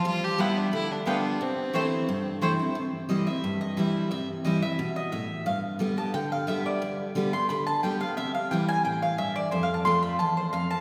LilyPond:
<<
  \new Staff \with { instrumentName = "Mandolin" } { \time 4/4 \key c \major \tempo 4 = 177 r4 <b f' b' g''>16 r4. r16 <b f' b' g''>16 r8. | r4 <a e' c'' g''>16 r4. r16 <a e' c'' g''>16 r8. | r4 ees''8 e''4 ees''8 e''4 | e''8 r8 ees''8 e''4 ees''8 e''4 |
f''8 r4 a''8 g''8 f''8 e''8 d''8~ | d''8 r4 c'''8 b''8 a''8 g''8 f''8 | e''8 f''8 g''8 aes''8 g''8 f''8 e''8 d''8 | \tuplet 3/2 { c''8 f''8 a''8 } c'''8 b''8 a''8 c''8 f''8 a''8 | }
  \new Staff \with { instrumentName = "Fiddle" } { \time 4/4 \key c \major f'8 g'8 e'8 d'8 e'8 d'8 d'4 | c'2. r4 | r1 | r1 |
r1 | r1 | r1 | r1 | }
  \new Staff \with { instrumentName = "Steel-string acoustic guitar" } { \clef bass \time 4/4 \key c \major << { r4 <g b f'>4 r4 <g b f'>4 | r4 <e a c' e'>4 r4 <e a c' e'>8 <c' e'>8 | r4 <e g c' e'>8 <c' e'>8 r4 <e g c' e'>4 | r4 <e g c' e'>8 <c' e'>8 r2 |
r4 <d g b g'>8 <b g'>8 r4 <d g b g'>4 | r4 <d g b g'>8 g'8 r4 <d g b g'>8 <b g'>8 | r4 <e g c' e'>4 r2 | r4 <f a c' f'>4 r2 | } \\ { g2 d2 | c2 g,2 | c2 g,2 | c2 b,4 a,4 |
g,2 d2 | g,2 d2 | c2 a,4 g,4 | f,2 e,4 f,4 | } >> }
>>